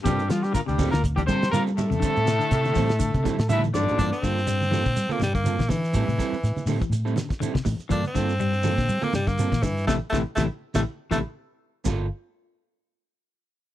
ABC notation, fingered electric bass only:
X:1
M:4/4
L:1/16
Q:"Swing 16ths" 1/4=122
K:Gdor
V:1 name="Fingered electric bass" clef=bass
G,,2 G,2 z D,,2 D,,3 G,2 G,3 F,, | z A,,2 z C,2 A,,3 C, z A,,3 G,, z | G,, z G,,4- G,, B,, G, z G,,3 B,, E,2 | A,, A,, z2 A,, z A,, z A,,2 z4 A,, z |
G,, z G,,4- G,, B,, G, z G,,3 B,, G,,2 | A,,, z A,,, z A,,, z2 A,,, z2 A,,, z4 z | G,,,2 z12 z2 |]